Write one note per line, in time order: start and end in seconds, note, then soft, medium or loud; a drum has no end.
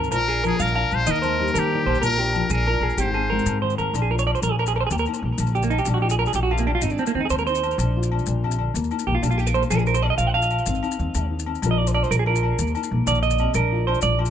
0.00 0.11 D#2 medium
0.00 0.10 D#3 medium
0.00 0.10 C4 medium
0.00 0.11 D#4 medium
0.00 0.10 A#4 medium
0.00 maracas soft
0.11 0.52 A#1 medium
0.11 0.74 A#2 medium
0.11 0.44 F4 medium
0.11 0.27 A#4 medium
0.11 0.42 A#4 loud
0.11 low agogo medium
0.11 maracas loud
0.28 0.59 D4 medium
0.28 0.43 G#4 medium
0.44 1.08 F3 medium
0.44 0.75 F4 medium
0.44 0.63 G#4 medium
0.44 0.59 A#4 medium
0.44 low agogo medium
0.44 maracas soft
0.59 0.87 A#1 medium
0.59 1.06 D4 medium
0.59 0.97 A#4 loud
0.59 0.74 F5 medium
0.59 maracas loud
0.75 1.05 A#2 medium
0.75 1.06 F4 medium
0.75 1.06 F5 medium
0.75 low agogo medium
0.91 1.05 A#1 medium
0.91 low agogo medium
0.91 maracas soft
0.95 1.12 C5 medium
1.06 1.48 D#2 loud
1.06 2.01 D#3 medium
1.06 1.39 D#4 medium
1.06 1.22 D#5 medium
1.06 maracas loud
1.11 1.60 A#4 medium
1.15 maracas soft
1.22 1.56 A#3 medium
1.22 1.53 C5 medium
1.22 low agogo medium
1.22 maracas soft
1.40 2.02 G3 medium
1.40 1.72 D#4 medium
1.48 maracas soft
1.54 1.82 D#3 loud
1.54 2.19 A#3 medium
1.54 1.85 A#4 medium
1.54 low agogo medium
1.54 maracas medium
1.59 2.04 G4 medium
1.73 2.02 A#2 medium
1.73 2.03 D#4 medium
1.86 2.00 A#1 medium
1.86 2.01 C5 medium
1.86 low agogo medium
1.95 maracas soft
2.01 2.43 A#1 medium
2.01 2.66 A#2 medium
2.01 2.35 F4 medium
2.01 2.18 A#4 medium
2.01 2.48 A#4 loud
2.01 low agogo medium
2.01 maracas medium
2.19 2.51 D4 medium
2.19 2.49 G4 medium
2.33 2.99 F3 medium
2.33 2.68 F4 medium
2.33 low agogo medium
2.33 maracas soft
2.50 2.77 A#1 loud
2.50 2.98 D4 medium
2.50 2.66 G#4 medium
2.50 2.97 A#4 loud
2.50 maracas medium
2.66 2.97 A#2 medium
2.66 2.98 F4 medium
2.66 2.83 A#4 medium
2.66 low agogo medium
2.81 2.95 A#1 medium
2.81 2.98 G#4 medium
2.81 low agogo medium
2.90 maracas soft
2.97 3.39 G#1 medium
2.97 3.93 G#2 medium
2.97 3.31 D#4 medium
2.97 3.14 G4 medium
2.97 3.60 C5 medium
2.97 maracas loud
3.14 3.47 C4 medium
3.14 3.30 G#4 medium
3.14 low agogo medium
3.30 3.94 G#3 medium
3.30 3.62 D#4 medium
3.30 3.61 A#4 medium
3.39 maracas soft
3.46 3.73 G#2 loud
3.46 3.94 C4 medium
3.46 low agogo medium
3.46 maracas loud
3.62 3.93 D#3 medium
3.62 3.93 D#4 medium
3.62 3.78 C5 medium
3.70 maracas soft
3.78 3.92 D#2 medium
3.78 3.94 A#4 medium
3.78 low agogo medium
3.78 maracas soft
3.94 4.35 A#1 loud
3.94 4.24 A#2 medium
3.94 4.25 D4 medium
3.94 low agogo medium
3.94 maracas medium
4.02 4.10 G#4 medium
4.11 4.57 F4 medium
4.11 4.19 A#4 medium
4.19 4.26 C#5 medium
4.19 maracas medium
4.27 4.34 D5 medium
4.27 low agogo medium
4.35 4.43 C5 medium
4.35 maracas soft
4.42 4.83 A#1 medium
4.42 4.71 F3 medium
4.42 4.52 A#4 medium
4.42 maracas medium
4.52 4.59 G#4 medium
4.58 4.67 A#4 medium
4.58 muted nylon-string guitar stroke medium
4.58 low agogo medium
4.66 4.75 G#4 medium
4.66 maracas medium
4.73 4.88 D4 medium
4.73 4.80 A#4 medium
4.73 low agogo medium
4.80 4.86 C5 medium
4.87 5.19 D#3 medium
4.87 4.91 G#4 medium
4.87 maracas medium
4.91 5.04 D#2 medium
4.91 5.23 A#3 medium
4.91 4.99 G4 medium
4.98 5.04 A#4 medium
4.98 maracas soft
5.06 5.86 D#4 medium
5.06 low agogo medium
5.06 maracas soft
5.14 maracas medium
5.22 5.36 A#1 medium
5.22 5.87 A#3 medium
5.38 5.79 A#1 loud
5.38 5.53 D#3 medium
5.38 low agogo medium
5.38 maracas medium
5.47 maracas soft
5.54 5.71 D3 medium
5.54 5.63 G4 medium
5.54 maracas soft
5.62 5.71 A#3 medium
5.62 maracas medium
5.70 5.79 D#4 medium
5.70 low agogo medium
5.70 maracas soft
5.78 5.87 G4 medium
5.78 maracas soft
5.85 6.28 A#1 loud
5.85 6.16 A#2 medium
5.85 6.19 D4 medium
5.85 muted clean electric guitar stroke medium
5.85 low agogo medium
5.85 maracas medium
5.94 6.02 F#4 medium
6.02 6.82 F4 medium
6.02 6.10 G4 medium
6.09 6.19 G#4 medium
6.09 maracas medium
6.19 6.82 D4 medium
6.19 6.27 A#4 medium
6.19 low agogo medium
6.26 6.35 G#4 medium
6.26 maracas soft
6.33 6.75 A#1 medium
6.33 6.42 G4 medium
6.33 muted nylon-string guitar stroke medium
6.33 maracas medium
6.43 6.51 F#4 medium
6.51 6.67 C3 medium
6.51 6.59 F4 medium
6.51 low agogo medium
6.58 6.67 A#3 medium
6.58 maracas medium
6.67 6.82 A#2 medium
6.67 6.74 D4 medium
6.67 low agogo medium
6.75 6.82 F4 loud
6.82 6.96 G#1 medium
6.82 7.12 G#2 medium
6.82 7.14 C4 medium
6.82 6.91 D#4 medium
6.82 maracas loud
6.90 6.99 D4 medium
6.90 maracas soft
6.98 7.07 C4 medium
6.98 7.48 D#4 medium
6.98 low agogo medium
6.98 maracas soft
7.06 7.15 A#3 medium
7.06 maracas medium
7.15 7.28 D#2 medium
7.15 7.20 C4 medium
7.15 7.63 C4 medium
7.21 7.26 D#4 medium
7.25 7.30 G#4 medium
7.30 7.71 D#2 medium
7.30 7.61 G#3 medium
7.30 7.38 C5 loud
7.30 low agogo medium
7.30 maracas medium
7.38 7.46 A#4 medium
7.38 maracas soft
7.47 7.78 D#4 medium
7.47 7.77 C5 medium
7.47 maracas soft
7.55 maracas medium
7.63 7.79 C4 medium
7.63 low agogo medium
7.63 maracas soft
7.71 maracas soft
7.78 8.19 A#1 loud
7.78 8.09 A#2 medium
7.78 low agogo medium
7.78 maracas medium
7.83 8.11 D4 medium
7.97 8.74 F4 medium
8.03 maracas medium
8.12 8.74 D4 medium
8.12 low agogo medium
8.19 maracas soft
8.26 8.67 A#1 medium
8.26 8.43 A#2 medium
8.26 maracas medium
8.44 8.58 C3 medium
8.44 low agogo medium
8.51 maracas medium
8.59 8.75 D3 medium
8.59 low agogo medium
8.74 8.88 D#2 loud
8.74 9.04 D#3 medium
8.74 9.06 A#3 medium
8.74 maracas loud
8.84 maracas soft
8.91 9.39 D#4 medium
8.91 low agogo medium
8.91 maracas soft
8.99 maracas medium
9.07 9.21 A#1 medium
9.07 9.54 A#3 medium
9.07 9.15 G4 medium
9.15 9.23 F4 medium
9.23 9.63 A#1 loud
9.23 9.52 G3 medium
9.23 9.30 D4 medium
9.23 low agogo medium
9.23 maracas loud
9.31 9.38 F4 medium
9.38 9.70 D#4 medium
9.38 9.47 G4 medium
9.38 maracas soft
9.47 9.55 A#4 medium
9.47 maracas medium
9.54 9.71 A#3 medium
9.54 9.62 C5 loud
9.54 low agogo medium
9.54 maracas soft
9.62 muted clean electric guitar stroke medium
9.62 maracas soft
9.70 10.11 A#1 loud
9.70 9.99 A#2 medium
9.70 10.17 F3 medium
9.70 10.03 D4 medium
9.70 9.87 F4 medium
9.70 9.79 A#4 medium
9.70 low agogo medium
9.70 maracas loud
9.79 9.87 G#4 medium
9.79 maracas soft
9.86 10.35 F4 medium
9.86 9.95 A#4 medium
9.86 maracas soft
9.94 10.03 C5 medium
9.94 maracas medium
10.03 10.52 D4 medium
10.03 10.10 D5 medium
10.03 low agogo medium
10.10 10.17 D#5 medium
10.18 10.59 A#1 medium
10.18 10.48 F3 medium
10.18 10.27 F5 loud
10.18 maracas medium
10.27 10.34 F#5 loud
10.34 10.66 F4 medium
10.34 11.27 F5 loud
10.34 low agogo medium
10.42 maracas medium
10.50 low agogo medium
10.50 maracas soft
10.58 maracas soft
10.66 10.80 G#1 medium
10.66 10.96 G#2 medium
10.66 10.99 C4 medium
10.66 maracas loud
10.75 maracas soft
10.83 11.29 D#4 medium
10.83 low agogo medium
10.83 maracas soft
10.91 maracas medium
10.99 11.13 D#2 medium
10.99 11.45 C4 medium
10.99 maracas soft
11.14 11.55 D#2 loud
11.14 11.44 G#3 medium
11.14 low agogo medium
11.14 maracas loud
11.30 11.61 D#4 medium
11.39 maracas medium
11.46 11.61 C4 medium
11.46 low agogo medium
11.55 maracas soft
11.62 12.03 A#1 loud
11.62 11.92 A#2 medium
11.62 12.09 F3 medium
11.62 11.96 D4 medium
11.62 11.78 F4 medium
11.62 12.58 A#4 medium
11.62 low agogo medium
11.62 maracas loud
11.71 11.79 D#5 medium
11.79 12.27 F4 medium
11.79 11.88 D5 medium
11.87 11.94 C5 medium
11.87 maracas medium
11.94 12.42 D4 medium
11.94 12.03 D5 medium
11.94 low agogo medium
12.03 12.11 C5 medium
12.03 maracas soft
12.10 12.51 A#1 medium
12.10 12.19 A#4 medium
12.10 muted nylon-string guitar stroke medium
12.10 maracas medium
12.19 12.27 G#4 medium
12.26 12.58 F4 medium
12.26 12.72 A#4 medium
12.26 low agogo medium
12.36 maracas medium
12.43 12.57 D4 medium
12.43 low agogo medium
12.59 12.72 D#2 medium
12.59 12.88 D#3 medium
12.59 12.91 A#3 medium
12.59 maracas loud
12.67 maracas soft
12.75 13.54 D#4 medium
12.75 low agogo medium
12.75 maracas soft
12.83 maracas medium
12.91 13.05 A#1 medium
12.91 13.54 A#3 medium
13.07 13.47 A#1 medium
13.07 13.23 D#3 medium
13.07 13.22 D5 loud
13.07 low agogo medium
13.07 maracas loud
13.15 maracas soft
13.23 13.39 D3 medium
13.23 13.53 D#5 medium
13.23 maracas soft
13.30 maracas medium
13.38 13.55 C3 medium
13.38 low agogo medium
13.38 maracas soft
13.54 13.95 A#1 loud
13.54 13.83 A#2 medium
13.54 13.87 D4 medium
13.54 13.85 A#4 medium
13.54 low agogo medium
13.54 maracas medium
13.72 14.19 F4 medium
13.87 14.30 D4 medium
13.87 14.02 C5 medium
13.87 low agogo medium
13.94 maracas soft
14.01 14.30 A#1 loud
14.01 14.30 F3 medium
14.01 14.18 D5 loud
14.01 maracas loud
14.19 14.30 F4 medium
14.19 low agogo medium
14.25 maracas medium